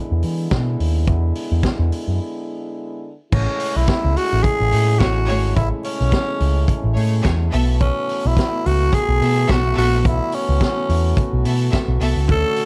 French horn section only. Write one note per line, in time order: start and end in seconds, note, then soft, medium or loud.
0.00 3.15 D3 medium
0.00 3.15 G#3 medium
0.00 3.15 B3 medium
0.00 3.15 E4 medium
3.32 7.49 C#3 medium
3.32 7.49 G#3 medium
3.32 12.25 A3 medium
3.32 7.49 E4 medium
7.52 12.25 E3 medium
7.52 12.25 B3 medium
7.52 12.65 F#4 medium
12.30 12.65 D3 medium
12.30 12.65 A3 medium
12.30 12.65 C#4 medium